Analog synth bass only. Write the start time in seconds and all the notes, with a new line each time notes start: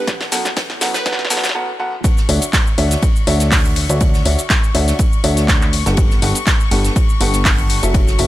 2.29 D2
2.78 D2
3.27 D2
3.89 D2
4.25 D2
4.75 D2
5.24 D2
5.86 G1
6.22 G1
6.71 G1
7.21 G1
7.83 F#1
8.19 F#1